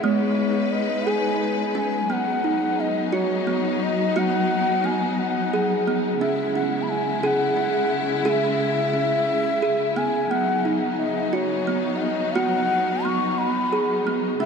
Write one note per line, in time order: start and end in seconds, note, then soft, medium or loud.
0.00 2.06 G#3 medium
0.00 0.72 B3 medium
0.00 2.07 D#4 medium
0.00 2.07 B4 medium
0.00 0.73 C#5 medium
0.72 1.11 D#5 medium
1.07 1.75 G#4 medium
1.07 1.77 G#5 medium
1.75 2.09 C#4 medium
1.75 2.13 G#5 medium
2.07 6.16 F#3 medium
2.07 6.15 B3 medium
2.07 3.46 B3 medium
2.07 6.16 D#4 medium
2.07 2.82 F#5 medium
2.44 3.13 D#4 medium
2.80 3.14 D#5 medium
3.12 3.47 F#4 medium
3.12 3.85 C#5 medium
3.47 4.15 B3 medium
3.83 4.20 D#5 medium
4.16 4.83 B3 medium
4.16 4.84 F#4 medium
4.16 4.87 F#5 medium
4.84 5.52 B3 medium
4.84 5.20 G#5 medium
5.19 5.95 F#5 medium
5.54 5.87 G#4 medium
5.87 6.21 B3 medium
6.19 10.26 C#3 medium
6.19 10.26 G#3 medium
6.19 6.54 C#4 medium
6.19 10.26 E4 medium
6.19 6.53 E5 medium
6.55 7.23 C#4 medium
6.55 6.84 F#5 medium
6.83 6.91 B5 medium
6.90 7.23 G#5 medium
7.23 7.57 G#4 medium
7.23 8.26 F#5 medium
7.23 7.27 G#5 medium
7.57 8.25 C#4 medium
8.25 8.92 C#4 medium
8.25 8.94 G#4 medium
8.25 8.30 F#5 medium
8.29 9.98 E5 loud
8.93 9.62 C#4 medium
9.62 9.96 G#4 medium
9.96 10.30 B3 medium
9.96 10.32 G#5 medium
10.29 14.36 F#3 medium
10.29 14.35 B3 medium
10.29 11.66 B3 medium
10.29 14.35 D#4 medium
10.29 10.72 F#5 medium
10.65 11.33 D#4 medium
10.98 11.35 D#5 medium
11.33 11.67 F#4 medium
11.33 11.98 C#5 medium
11.67 12.34 B3 medium
11.97 12.04 F#5 medium
12.02 12.37 D#5 medium
12.35 13.04 B3 medium
12.35 13.04 F#4 medium
12.35 13.06 F#5 medium
13.05 13.73 B3 medium
13.05 13.40 C#6 medium
13.38 14.15 B5 medium
13.73 14.06 G#4 medium
14.07 14.41 B3 medium
14.40 14.46 C#3 medium
14.40 14.46 G#3 medium
14.40 14.46 C#4 medium
14.40 14.46 E4 medium
14.40 14.46 E5 medium